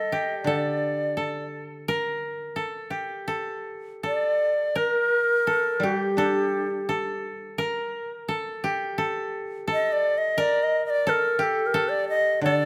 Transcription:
Already playing: koto G3 A4, shakuhachi D#5
0.12 koto G4
0.42 koto D3, shakuhachi D5
0.47 koto A4
1.17 koto A4
1.88 koto A#4
2.56 koto A4
2.90 koto G4
3.28 koto A4
4.03 koto A4, shakuhachi D5
4.75 koto A#4, shakuhachi A#4
5.47 koto A4
5.80 koto G3 G4
5.84 shakuhachi F#4
5.95 shakuhachi G4
6.17 koto D4 A4
6.89 koto A4
7.58 koto A#4
8.28 koto A4
8.64 koto G4
8.98 koto A4
9.68 koto A4
9.72 shakuhachi D#5
9.92 shakuhachi D5
10.18 shakuhachi D#5
10.38 koto A#4, shakuhachi D5
10.63 shakuhachi D#5
10.86 shakuhachi D#5
10.90 shakuhachi D5
11.07 koto A4, shakuhachi A#4
11.39 koto G4, shakuhachi A4
11.66 shakuhachi A#4
11.74 koto A4
11.89 shakuhachi D5
12.09 shakuhachi D#5
12.41 koto D3, shakuhachi D5
12.46 koto A4

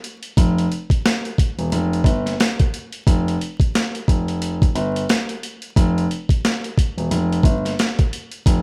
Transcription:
0.04 closed hi-hat
0.23 closed hi-hat
0.37 grand piano F1, kick, closed hi-hat
0.58 closed hi-hat
0.72 closed hi-hat
0.90 kick, closed hi-hat
1.06 snare, closed hi-hat
1.25 closed hi-hat
1.38 kick, closed hi-hat
1.58 grand piano E1, closed hi-hat
1.72 grand piano F1, closed hi-hat
1.93 closed hi-hat
2.04 grand piano G1, kick, closed hi-hat
2.26 snare, closed hi-hat
2.40 snare, closed hi-hat
2.59 kick, closed hi-hat
2.74 closed hi-hat
2.92 closed hi-hat
3.07 grand piano F1, kick, closed hi-hat
3.28 closed hi-hat
3.41 closed hi-hat
3.60 kick, closed hi-hat
3.75 snare, closed hi-hat
3.95 closed hi-hat
4.08 grand piano F1, kick, closed hi-hat
4.28 closed hi-hat
4.42 closed hi-hat
4.62 kick, closed hi-hat
4.75 grand piano G1, closed hi-hat
4.96 closed hi-hat
5.09 snare, closed hi-hat
5.29 closed hi-hat
5.43 closed hi-hat
5.62 closed hi-hat
5.76 grand piano F1, kick, closed hi-hat
5.98 closed hi-hat
6.11 closed hi-hat
6.29 kick, closed hi-hat
6.45 snare, closed hi-hat
6.64 closed hi-hat
6.78 kick, closed hi-hat
6.97 grand piano E1, closed hi-hat
7.11 grand piano F1, closed hi-hat
7.33 closed hi-hat
7.43 grand piano G1, kick, closed hi-hat
7.65 snare, closed hi-hat
7.79 snare, closed hi-hat
7.99 kick, closed hi-hat
8.13 closed hi-hat
8.32 closed hi-hat
8.46 grand piano F1, kick, closed hi-hat

